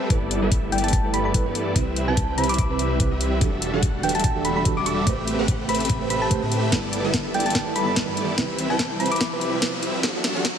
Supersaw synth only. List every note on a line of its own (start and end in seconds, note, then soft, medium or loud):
0.10 0.40 G3 loud
0.10 0.40 B3 medium
0.10 0.40 E4 medium
0.10 0.40 A4 medium
0.10 0.40 D5 loud
0.42 0.70 G3 medium
0.42 0.70 B3 medium
0.42 0.70 E4 medium
0.42 0.70 A4 medium
0.42 0.70 E5 loud
0.72 1.02 G3 medium
0.72 1.02 B3 medium
0.72 1.02 E4 medium
0.72 1.02 A4 medium
0.72 1.02 D5 medium
1.04 1.43 G3 medium
1.04 1.43 B3 medium
1.04 1.43 E4 medium
1.04 1.43 A4 medium
1.04 1.43 D5 medium
1.46 1.74 G3 medium
1.46 1.74 B3 medium
1.46 1.74 E4 medium
1.46 1.74 A4 medium
1.46 1.74 D5 loud
1.76 2.05 G3 loud
1.76 2.05 C4 medium
1.76 2.05 E4 medium
1.76 2.05 B4 medium
1.76 2.05 E5 loud
2.08 2.36 G3 medium
2.08 2.36 C4 medium
2.08 2.36 E4 medium
2.08 2.36 B4 medium
2.08 2.36 G5 loud
2.38 2.67 G3 medium
2.38 2.67 C4 medium
2.38 2.67 E4 medium
2.38 2.67 B4 medium
2.38 2.67 E5 loud
2.70 3.09 G3 medium
2.70 3.09 C4 medium
2.70 3.09 E4 medium
2.70 3.09 B4 medium
2.70 3.09 E5 medium
3.11 3.39 G3 medium
3.11 3.39 C4 medium
3.11 3.39 E4 medium
3.11 3.39 B4 medium
3.11 3.39 E5 loud
3.41 3.71 G3 medium
3.41 3.71 D4 medium
3.41 3.71 F#4 medium
3.41 3.71 A4 medium
3.41 3.71 E5 loud
3.73 4.01 G3 medium
3.73 4.01 D4 medium
3.73 4.01 F#4 medium
3.73 4.01 A4 medium
3.73 4.01 F#5 loud
4.03 4.33 G3 medium
4.03 4.33 D4 medium
4.03 4.33 F#4 medium
4.03 4.33 A4 medium
4.03 4.33 E5 loud
4.36 4.74 G3 medium
4.36 4.74 D4 medium
4.36 4.74 F#4 medium
4.36 4.74 A4 medium
4.36 4.74 E5 medium
4.77 5.05 G3 medium
4.77 5.05 D4 medium
4.77 5.05 F#4 medium
4.77 5.05 A4 medium
4.77 5.05 E5 loud
5.07 5.36 A3 loud
5.07 5.36 C4 medium
5.07 5.36 G4 medium
5.07 5.36 B4 medium
5.07 5.36 E5 loud
5.39 5.67 A3 medium
5.39 5.67 C4 medium
5.39 5.67 G4 medium
5.39 5.67 B4 medium
5.39 5.67 F#5 loud
5.69 5.98 A3 medium
5.69 5.98 C4 medium
5.69 5.98 G4 medium
5.69 5.98 B4 medium
5.69 5.98 E5 medium
6.01 6.40 A3 medium
6.01 6.40 C4 medium
6.01 6.40 G4 medium
6.01 6.40 B4 medium
6.01 6.40 E5 medium
6.42 6.70 A3 medium
6.42 6.70 C4 medium
6.42 6.70 G4 medium
6.42 6.70 B4 medium
6.42 6.70 E5 loud
6.72 7.02 G3 loud
6.72 7.02 B3 medium
6.72 7.02 E4 medium
6.72 7.02 A4 medium
6.72 7.02 D5 loud
7.04 7.32 G3 medium
7.04 7.32 B3 medium
7.04 7.32 E4 medium
7.04 7.32 A4 medium
7.04 7.32 E5 loud
7.34 7.64 G3 medium
7.34 7.64 B3 medium
7.34 7.64 E4 medium
7.34 7.64 A4 medium
7.34 7.64 D5 medium
7.67 8.05 G3 medium
7.67 8.05 B3 medium
7.67 8.05 E4 medium
7.67 8.05 A4 medium
7.67 8.05 D5 medium
8.08 8.36 G3 medium
8.08 8.36 B3 medium
8.08 8.36 E4 medium
8.08 8.36 A4 medium
8.08 8.36 D5 loud
8.38 8.67 G3 loud
8.38 8.67 C4 medium
8.38 8.67 E4 medium
8.38 8.67 B4 medium
8.38 8.67 E5 loud
8.70 8.98 G3 loud
8.70 8.98 C4 medium
8.70 8.98 E4 medium
8.70 8.98 B4 medium
8.70 8.98 G5 loud
9.00 9.29 G3 medium
9.00 9.29 C4 medium
9.00 9.29 E4 medium
9.00 9.29 B4 medium
9.00 9.29 E5 loud
9.32 9.71 G3 medium
9.32 9.71 C4 medium
9.32 9.71 E4 medium
9.32 9.71 B4 medium
9.32 9.71 E5 medium
9.73 10.01 G3 medium
9.73 10.01 C4 medium
9.73 10.01 E4 medium
9.73 10.01 B4 medium
9.73 10.01 E5 loud
10.03 10.33 G3 loud
10.03 10.33 D4 medium
10.03 10.33 F#4 medium
10.03 10.33 A4 medium
10.03 10.33 E5 loud
10.36 10.58 G3 medium
10.36 10.58 D4 medium
10.36 10.58 F#4 medium
10.36 10.58 A4 medium
10.36 10.58 F#5 loud